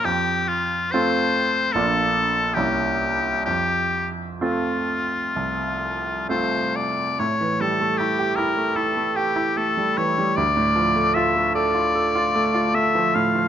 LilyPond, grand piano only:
\new Staff \with { instrumentName = "Grand piano" } { \time 4/4 \key f \major \tempo 4 = 74 f,4 <a c' f'>4 <bes,, bes d' f'>4 <c, bes des' e'>4 | f,4 <a c' f'>4 c,4 <a c' f'>4 | a,16 e16 g16 a16 e'16 g'16 e'16 a16 e'16 a16 g'16 e'16 a16 g16 e16 g16 | d,16 a,16 f16 a16 f'16 a16 a'16 f'16 a'16 f'16 a16 f'16 a16 f16 a,16 f16 | }